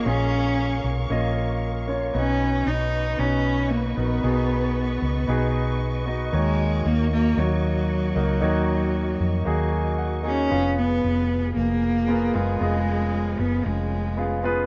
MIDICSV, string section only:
0, 0, Header, 1, 2, 480
1, 0, Start_track
1, 0, Tempo, 523104
1, 53, Time_signature, 4, 2, 24, 8
1, 13453, End_track
2, 0, Start_track
2, 0, Title_t, "String section"
2, 0, Program_c, 0, 48
2, 0, Note_on_c, 0, 70, 59
2, 0, Note_on_c, 0, 77, 58
2, 0, Note_on_c, 0, 85, 72
2, 1928, Note_off_c, 0, 70, 0
2, 1928, Note_off_c, 0, 85, 0
2, 1929, Note_off_c, 0, 77, 0
2, 1970, Note_on_c, 0, 85, 62
2, 1973, Note_on_c, 0, 71, 61
2, 1973, Note_on_c, 0, 75, 55
2, 5769, Note_off_c, 0, 71, 0
2, 5808, Note_on_c, 0, 66, 66
2, 9610, Note_off_c, 0, 85, 0
2, 9611, Note_off_c, 0, 66, 0
2, 9611, Note_off_c, 0, 75, 0
2, 9642, Note_on_c, 0, 68, 67
2, 9643, Note_on_c, 0, 53, 59
2, 9644, Note_on_c, 0, 47, 58
2, 11548, Note_off_c, 0, 47, 0
2, 11575, Note_on_c, 0, 61, 60
2, 13451, Note_off_c, 0, 68, 0
2, 13453, Note_off_c, 0, 53, 0
2, 13453, Note_off_c, 0, 61, 0
2, 13453, End_track
0, 0, End_of_file